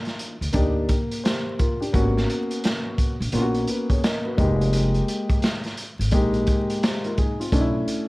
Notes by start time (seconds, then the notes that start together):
Already playing: A#3 D4 D#4 F4
0.05 snare, closed hi-hat
0.19 closed hi-hat
0.41 D2, closed hi-hat
0.53 D2 A#3 D4 D#4 G4, kick, closed hi-hat
0.89 kick, closed hi-hat
1.11 closed hi-hat
1.24 G4 C5, snare, closed hi-hat
1.59 F4 A#4, kick, closed hi-hat
1.80 D4 G4, closed hi-hat
1.93 G#1 A#3 B3 C#4 F#4, kick, closed hi-hat
2.17 snare
2.30 closed hi-hat
2.51 closed hi-hat
2.64 snare, closed hi-hat
2.98 kick, closed hi-hat
3.20 A#1, closed hi-hat
3.32 A#1 A#3 B3 C#4 F4, closed hi-hat
3.42 F#4
3.54 closed hi-hat
3.68 F#4 B4, closed hi-hat
3.90 G#4 C#5, kick, closed hi-hat
4.04 A#4, snare, closed hi-hat
4.25 F#4 B4
4.37 F1 G#3 A#3 D#4 G4, kick, closed hi-hat
4.61 closed hi-hat
4.73 closed hi-hat
4.94 closed hi-hat
5.08 closed hi-hat
5.30 kick, closed hi-hat
5.42 snare, closed hi-hat
5.64 snare, closed hi-hat
5.77 closed hi-hat
5.99 G#1, closed hi-hat
6.11 A#1 G#3 A#3 D#4 G4, kick, closed hi-hat
6.34 closed hi-hat
6.47 kick, closed hi-hat
6.70 closed hi-hat
6.83 G4 C5, snare, closed hi-hat
7.04 F4 A#4, closed hi-hat
7.18 D#4 G#4, kick, closed hi-hat
7.40 C4 F4, closed hi-hat
7.52 B1 A3 C#4 D4 D#4, kick, closed hi-hat
7.61 E4
7.88 closed hi-hat